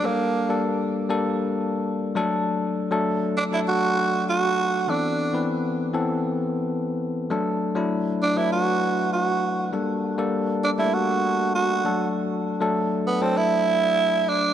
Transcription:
X:1
M:4/4
L:1/16
Q:1/4=99
K:Dmix
V:1 name="Tenor saxophone"
_B,4 z12 | z6 D E F4 F4 | D4 z12 | z6 D E F4 F4 |
z6 D E F4 F4 | z6 B, C E6 D2 |]
V:2 name="Tine electric piano"
[G,_B,DA]2 z [G,B,DA]3 z [G,B,DA]6 z [F,A,DA]2- | [F,A,DA]2 z [F,A,DA]3 z [F,A,DA]6 z3 | [E,B,CA]2 z [E,B,CB]3 z [E,B,CA]6 z3 | [F,A,DA]2 z [F,A,DE]3 z [F,A,DB]6 z3 |
[G,_B,DA]2 z [G,B,DA]3 z [G,A,B,DA]6 z [F,A,DA]2- | [F,A,DA]2 z [F,A,DA]3 z [F,A,DA]6 z3 |]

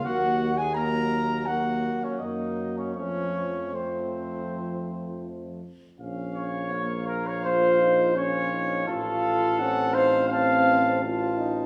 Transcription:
X:1
M:4/4
L:1/16
Q:1/4=83
K:Bbm
V:1 name="Trumpet"
g3 a b4 g3 d e3 d | d4 c8 z4 | f4 f8 f4 | f4 g2 f2 =a4 a4 |]
V:2 name="Flugelhorn"
G3 A B4 G3 D E3 D | D4 C8 z4 | z2 d4 B d c4 d4 | =A6 c2 f6 z2 |]
V:3 name="French horn"
B,2 z2 B,4 B,4 B,4 | =A,4 A,8- A,2 z2 | z8 F4 D2 E2 | F4 D2 E2 C4 F4 |]
V:4 name="Trombone"
G,2 z2 G,4 G,4 G,4 | F,4 F,8- F,2 z2 | D4 B,4 F2 E2 D4 | F4 C4 C4 F2 E2 |]
V:5 name="Tuba" clef=bass
E,,8- E,,2 z2 G,,4 | F,,12- F,,2 z2 | B,,,16 | =A,,,16 |]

